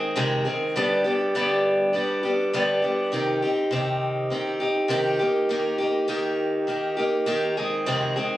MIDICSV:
0, 0, Header, 1, 2, 480
1, 0, Start_track
1, 0, Key_signature, -3, "minor"
1, 0, Tempo, 592300
1, 611, Time_signature, 4, 2, 24, 8
1, 6783, End_track
2, 0, Start_track
2, 0, Title_t, "Steel-string acoustic guitar"
2, 0, Program_c, 0, 25
2, 0, Note_on_c, 0, 51, 48
2, 0, Note_on_c, 0, 56, 51
2, 0, Note_on_c, 0, 60, 60
2, 0, Note_on_c, 0, 68, 57
2, 125, Note_off_c, 0, 51, 0
2, 126, Note_off_c, 0, 56, 0
2, 126, Note_on_c, 0, 41, 85
2, 130, Note_off_c, 0, 60, 0
2, 131, Note_off_c, 0, 68, 0
2, 131, Note_on_c, 0, 48, 94
2, 135, Note_on_c, 0, 51, 92
2, 135, Note_on_c, 0, 56, 97
2, 140, Note_on_c, 0, 60, 101
2, 141, Note_on_c, 0, 68, 94
2, 354, Note_off_c, 0, 68, 0
2, 363, Note_off_c, 0, 60, 0
2, 364, Note_on_c, 0, 68, 63
2, 369, Note_off_c, 0, 41, 0
2, 371, Note_off_c, 0, 48, 0
2, 373, Note_off_c, 0, 51, 0
2, 373, Note_off_c, 0, 56, 0
2, 373, Note_on_c, 0, 60, 58
2, 383, Note_on_c, 0, 56, 54
2, 388, Note_on_c, 0, 51, 53
2, 607, Note_off_c, 0, 68, 0
2, 612, Note_off_c, 0, 60, 0
2, 613, Note_on_c, 0, 43, 83
2, 615, Note_off_c, 0, 51, 0
2, 615, Note_on_c, 0, 50, 83
2, 617, Note_off_c, 0, 56, 0
2, 618, Note_on_c, 0, 55, 90
2, 623, Note_on_c, 0, 67, 97
2, 624, Note_on_c, 0, 59, 90
2, 626, Note_on_c, 0, 62, 92
2, 835, Note_off_c, 0, 67, 0
2, 845, Note_on_c, 0, 67, 65
2, 847, Note_off_c, 0, 62, 0
2, 851, Note_off_c, 0, 59, 0
2, 852, Note_off_c, 0, 43, 0
2, 853, Note_off_c, 0, 50, 0
2, 854, Note_off_c, 0, 55, 0
2, 857, Note_on_c, 0, 62, 57
2, 860, Note_on_c, 0, 59, 52
2, 870, Note_on_c, 0, 55, 52
2, 1088, Note_off_c, 0, 67, 0
2, 1089, Note_off_c, 0, 55, 0
2, 1092, Note_off_c, 0, 59, 0
2, 1093, Note_on_c, 0, 43, 89
2, 1094, Note_off_c, 0, 62, 0
2, 1095, Note_on_c, 0, 50, 84
2, 1099, Note_on_c, 0, 55, 90
2, 1102, Note_on_c, 0, 59, 88
2, 1104, Note_on_c, 0, 62, 96
2, 1107, Note_on_c, 0, 67, 87
2, 1561, Note_off_c, 0, 55, 0
2, 1563, Note_off_c, 0, 59, 0
2, 1564, Note_on_c, 0, 55, 62
2, 1569, Note_off_c, 0, 62, 0
2, 1571, Note_off_c, 0, 43, 0
2, 1572, Note_off_c, 0, 50, 0
2, 1573, Note_on_c, 0, 59, 67
2, 1579, Note_on_c, 0, 62, 72
2, 1583, Note_off_c, 0, 67, 0
2, 1586, Note_on_c, 0, 67, 67
2, 1798, Note_off_c, 0, 67, 0
2, 1807, Note_off_c, 0, 55, 0
2, 1808, Note_on_c, 0, 67, 58
2, 1810, Note_off_c, 0, 62, 0
2, 1811, Note_off_c, 0, 59, 0
2, 1820, Note_on_c, 0, 62, 50
2, 1827, Note_on_c, 0, 59, 50
2, 1831, Note_on_c, 0, 55, 47
2, 2049, Note_off_c, 0, 55, 0
2, 2049, Note_off_c, 0, 67, 0
2, 2053, Note_off_c, 0, 59, 0
2, 2053, Note_off_c, 0, 62, 0
2, 2054, Note_on_c, 0, 43, 94
2, 2056, Note_on_c, 0, 50, 87
2, 2058, Note_on_c, 0, 55, 99
2, 2062, Note_on_c, 0, 59, 92
2, 2062, Note_on_c, 0, 62, 100
2, 2068, Note_on_c, 0, 67, 93
2, 2277, Note_off_c, 0, 67, 0
2, 2286, Note_on_c, 0, 67, 61
2, 2289, Note_off_c, 0, 62, 0
2, 2291, Note_off_c, 0, 59, 0
2, 2292, Note_off_c, 0, 43, 0
2, 2293, Note_off_c, 0, 50, 0
2, 2294, Note_off_c, 0, 55, 0
2, 2298, Note_on_c, 0, 62, 58
2, 2301, Note_on_c, 0, 59, 50
2, 2309, Note_on_c, 0, 55, 49
2, 2526, Note_on_c, 0, 48, 83
2, 2528, Note_off_c, 0, 67, 0
2, 2530, Note_off_c, 0, 55, 0
2, 2533, Note_on_c, 0, 51, 87
2, 2534, Note_off_c, 0, 62, 0
2, 2535, Note_off_c, 0, 59, 0
2, 2538, Note_on_c, 0, 60, 82
2, 2541, Note_on_c, 0, 63, 86
2, 2543, Note_on_c, 0, 67, 95
2, 2764, Note_off_c, 0, 67, 0
2, 2768, Note_off_c, 0, 48, 0
2, 2772, Note_off_c, 0, 51, 0
2, 2774, Note_off_c, 0, 60, 0
2, 2774, Note_on_c, 0, 67, 60
2, 2776, Note_off_c, 0, 63, 0
2, 2785, Note_on_c, 0, 63, 53
2, 2801, Note_on_c, 0, 60, 49
2, 3004, Note_on_c, 0, 48, 82
2, 3008, Note_off_c, 0, 60, 0
2, 3012, Note_off_c, 0, 67, 0
2, 3013, Note_off_c, 0, 63, 0
2, 3015, Note_on_c, 0, 51, 81
2, 3017, Note_on_c, 0, 60, 86
2, 3023, Note_on_c, 0, 63, 94
2, 3024, Note_on_c, 0, 67, 87
2, 3478, Note_off_c, 0, 51, 0
2, 3487, Note_off_c, 0, 48, 0
2, 3487, Note_off_c, 0, 60, 0
2, 3487, Note_on_c, 0, 51, 57
2, 3496, Note_on_c, 0, 60, 67
2, 3497, Note_off_c, 0, 67, 0
2, 3501, Note_off_c, 0, 63, 0
2, 3504, Note_on_c, 0, 63, 65
2, 3508, Note_on_c, 0, 67, 67
2, 3718, Note_off_c, 0, 67, 0
2, 3727, Note_on_c, 0, 67, 61
2, 3729, Note_off_c, 0, 51, 0
2, 3730, Note_off_c, 0, 63, 0
2, 3733, Note_off_c, 0, 60, 0
2, 3740, Note_on_c, 0, 63, 52
2, 3748, Note_on_c, 0, 60, 48
2, 3957, Note_on_c, 0, 48, 93
2, 3962, Note_off_c, 0, 60, 0
2, 3965, Note_off_c, 0, 63, 0
2, 3965, Note_on_c, 0, 51, 84
2, 3969, Note_off_c, 0, 67, 0
2, 3972, Note_on_c, 0, 60, 92
2, 3975, Note_on_c, 0, 63, 104
2, 3979, Note_on_c, 0, 67, 105
2, 4197, Note_off_c, 0, 67, 0
2, 4204, Note_off_c, 0, 48, 0
2, 4207, Note_on_c, 0, 67, 62
2, 4208, Note_off_c, 0, 51, 0
2, 4211, Note_off_c, 0, 60, 0
2, 4213, Note_off_c, 0, 63, 0
2, 4223, Note_on_c, 0, 63, 56
2, 4232, Note_on_c, 0, 58, 53
2, 4449, Note_off_c, 0, 58, 0
2, 4449, Note_off_c, 0, 67, 0
2, 4450, Note_on_c, 0, 51, 76
2, 4453, Note_off_c, 0, 63, 0
2, 4459, Note_on_c, 0, 58, 89
2, 4463, Note_on_c, 0, 63, 88
2, 4468, Note_on_c, 0, 67, 86
2, 4677, Note_off_c, 0, 67, 0
2, 4686, Note_on_c, 0, 67, 66
2, 4691, Note_off_c, 0, 51, 0
2, 4692, Note_off_c, 0, 63, 0
2, 4695, Note_off_c, 0, 58, 0
2, 4702, Note_on_c, 0, 63, 57
2, 4713, Note_on_c, 0, 58, 51
2, 4919, Note_off_c, 0, 58, 0
2, 4925, Note_off_c, 0, 63, 0
2, 4925, Note_on_c, 0, 51, 80
2, 4929, Note_off_c, 0, 67, 0
2, 4929, Note_on_c, 0, 58, 89
2, 4935, Note_on_c, 0, 63, 93
2, 4940, Note_on_c, 0, 67, 93
2, 5396, Note_off_c, 0, 51, 0
2, 5403, Note_off_c, 0, 58, 0
2, 5405, Note_on_c, 0, 51, 63
2, 5413, Note_on_c, 0, 58, 65
2, 5416, Note_off_c, 0, 67, 0
2, 5417, Note_off_c, 0, 63, 0
2, 5420, Note_on_c, 0, 63, 62
2, 5428, Note_on_c, 0, 67, 68
2, 5637, Note_off_c, 0, 67, 0
2, 5647, Note_on_c, 0, 67, 59
2, 5648, Note_off_c, 0, 63, 0
2, 5649, Note_off_c, 0, 51, 0
2, 5653, Note_off_c, 0, 58, 0
2, 5658, Note_on_c, 0, 63, 52
2, 5669, Note_on_c, 0, 58, 49
2, 5883, Note_off_c, 0, 58, 0
2, 5885, Note_on_c, 0, 51, 97
2, 5886, Note_off_c, 0, 63, 0
2, 5890, Note_off_c, 0, 67, 0
2, 5892, Note_on_c, 0, 58, 95
2, 5895, Note_on_c, 0, 63, 96
2, 5900, Note_on_c, 0, 67, 100
2, 6129, Note_off_c, 0, 51, 0
2, 6133, Note_off_c, 0, 58, 0
2, 6133, Note_off_c, 0, 67, 0
2, 6134, Note_off_c, 0, 63, 0
2, 6136, Note_on_c, 0, 68, 71
2, 6141, Note_on_c, 0, 60, 58
2, 6152, Note_on_c, 0, 56, 52
2, 6159, Note_on_c, 0, 51, 48
2, 6367, Note_off_c, 0, 51, 0
2, 6370, Note_off_c, 0, 56, 0
2, 6372, Note_on_c, 0, 41, 86
2, 6373, Note_on_c, 0, 48, 84
2, 6375, Note_off_c, 0, 68, 0
2, 6376, Note_off_c, 0, 60, 0
2, 6376, Note_on_c, 0, 51, 94
2, 6380, Note_on_c, 0, 56, 87
2, 6385, Note_on_c, 0, 60, 90
2, 6387, Note_on_c, 0, 68, 88
2, 6602, Note_off_c, 0, 68, 0
2, 6611, Note_off_c, 0, 60, 0
2, 6612, Note_on_c, 0, 68, 62
2, 6613, Note_off_c, 0, 41, 0
2, 6614, Note_off_c, 0, 48, 0
2, 6615, Note_off_c, 0, 51, 0
2, 6617, Note_off_c, 0, 56, 0
2, 6621, Note_on_c, 0, 60, 60
2, 6626, Note_on_c, 0, 56, 58
2, 6633, Note_on_c, 0, 51, 50
2, 6783, Note_off_c, 0, 51, 0
2, 6783, Note_off_c, 0, 56, 0
2, 6783, Note_off_c, 0, 60, 0
2, 6783, Note_off_c, 0, 68, 0
2, 6783, End_track
0, 0, End_of_file